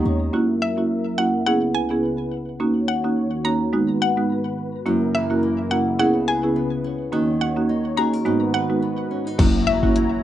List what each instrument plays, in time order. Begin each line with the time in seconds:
Already playing: nylon-string guitar D#3, marimba A#3 C#4 D#4 G4, analog synth pad G4 C#5 A#5 D#6
0.05 808-style bass D#2, nylon-string guitar C#4
0.33 analog synth pad F#2 F#3 A#4 E5, marimba A#3 C#4 E4 F#4
0.62 synth pluck E5
0.77 marimba A#3 C#4 E4 F#4
1.18 marimba A#3 C#4 E4 F#4, synth pluck F#5
1.46 analog synth pad C#2 C#3 E4 B4, marimba B3 C#4 E4 G#4, synth pluck F#5
1.75 synth pluck G#5
1.90 marimba B3 C#4 E4 G#4
2.60 analog synth pad D#2 D#3 F#4 C#5, marimba A#3 C#4 D#4 F#4
2.88 synth pluck F#5
3.04 marimba A#3 C#4 D#4 F#4
3.45 marimba A#3 C#4 D#4 F#4, synth pluck A#5
3.73 analog synth pad G#2 B4, marimba G#3 B3 D#4 F#4
4.02 synth pluck F#5
4.17 marimba G#3 B3 D#4 F#4
4.86 analog synth pad F#2 C#3 E4 A#4, nylon-string guitar F#2, marimba A#3 C#4 E4 F#4
5.14 nylon-string guitar E3, synth pluck E5
5.30 marimba A#3 C#4 E4 F#4
5.43 nylon-string guitar A#3
5.71 marimba A#3 C#4 E4 F#4, nylon-string guitar E4, synth pluck F#5
5.99 analog synth pad C#2 B4, nylon-string guitar C#3, marimba B3 C#4 E4 G#4, synth pluck F#5
6.28 nylon-string guitar G#4, synth pluck G#5
6.43 marimba B3 C#4 E4 G#4
6.56 nylon-string guitar B3
6.84 nylon-string guitar C#4
7.12 analog synth pad D#2 D#3 F#4 C#5, nylon-string guitar D#3, marimba A#3 C#4 D#4 F#4
7.41 nylon-string guitar C#4, synth pluck F#5
7.56 marimba A#3 C#4 D#4 F#4
7.69 nylon-string guitar D#4
7.97 marimba A#3 C#4 D#4 F#4, nylon-string guitar G#4, synth pluck A#5
8.13 nylon-string guitar A#4
8.25 analog synth pad G#2 D#3 B4, nylon-string guitar G#2, marimba G#3 B3 D#4 F#4
8.54 nylon-string guitar B4, synth pluck F#5
8.69 marimba G#3 B3 D#4 F#4
8.82 nylon-string guitar B3
9.11 nylon-string guitar C#4
9.27 nylon-string guitar D#4
9.39 808-style bass F#1, nylon-string guitar F#2, marimba A#3 C#4 E4 F#4, analog synth pad F#4 C#5 E5 A#5, kick, closed hi-hat, crash, impact
9.67 nylon-string guitar E3, synth pluck E5
9.83 808-style bass G#1, marimba A#3 C#4 E4 F#4
9.96 nylon-string guitar E4, closed hi-hat